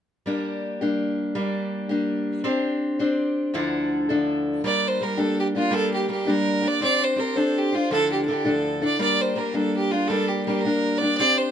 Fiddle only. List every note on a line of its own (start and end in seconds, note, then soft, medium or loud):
4.66 4.89 D5 medium
4.87 5.04 C5 medium
5.03 5.21 A#4 medium
5.19 5.39 A4 medium
5.40 5.47 G4 medium
5.56 5.75 F4 medium
5.74 5.93 A4 loud
5.94 6.09 G4 medium
6.11 6.31 G4 medium
6.29 6.69 A#4 medium
6.67 6.82 D5 medium
6.83 7.05 D5 loud
7.04 7.21 C5 medium
7.19 7.38 A#4 medium
7.37 7.59 A4 medium
7.58 7.76 G4 medium
7.75 7.91 F4 medium
7.92 8.10 A4 medium
8.12 8.23 G4 medium
8.25 8.34 A4 soft
8.33 8.50 G4 medium
8.48 8.83 A4 medium
8.84 8.99 D5 medium
9.01 9.22 D5 medium
9.21 9.39 C5 medium
9.38 9.57 A#4 medium
9.55 9.75 A4 medium
9.77 9.92 G4 medium
9.91 10.09 F4 medium
10.08 10.29 A4 medium
10.28 10.45 G4 medium
10.45 10.62 G4 medium
10.61 10.99 A#4 medium
10.98 11.16 D5 medium
11.17 11.39 D5 medium
11.38 11.51 C5 medium